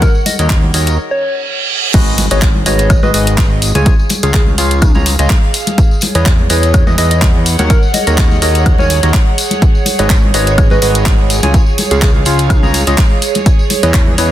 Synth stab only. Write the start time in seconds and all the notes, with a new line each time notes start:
Already playing: D#3 F#4 A#4 C#5 F#5
0.39 D#3 F#4 A#4 C#5 D#5
0.74 D#3 F#4 A#4 C#5 D#5
1.94 G#3 F#4 G#4 B4 D#5
2.31 G#3 F#4 G#4 B4 D#5
2.66 G#3 F#4 G#4 B4 D#5
3.03 G#3 F#4 G#4 B4 D#5
3.14 G#3 F#4 G#4 B4 D#5
3.75 C#3 F4 G#4 C#5 G#5
4.23 C#3 F4 G#4 C#5 F5
4.58 C#3 F4 G#4 C#5 F5
4.95 C#3 F4 G#4 C#5 A#5
5.19 C#3 F4 G#4 C#5 D#5
6.15 E3 E4 G#4 B4 D#5
6.50 E3 E4 G#4 B4 D#5
6.87 E3 E4 G#4 B4 D#5
6.98 E3 E4 G#4 B4 D#5
7.59 D#3 F#4 A#4 C#5 F#5
8.07 D#3 F#4 A#4 C#5 D#5
8.42 D#3 F#4 A#4 C#5 D#5
8.79 D#3 F#4 A#4 C#5 G#5
9.03 D#3 F#4 A#4 C#5 D#5
9.99 G#3 F#4 G#4 B4 D#5
10.34 G#3 F#4 G#4 B4 D#5
10.71 G#3 F#4 G#4 B4 D#5
10.82 G#3 F#4 G#4 B4 D#5
11.43 C#3 F4 G#4 C#5 G#5
11.91 C#3 F4 G#4 C#5 F5
12.26 C#3 F4 G#4 C#5 F5
12.63 C#3 F4 G#4 C#5 A#5
12.87 C#3 F4 G#4 C#5 D#5
13.83 E3 E4 G#4 B4 D#5
14.18 E3 E4 G#4 B4 D#5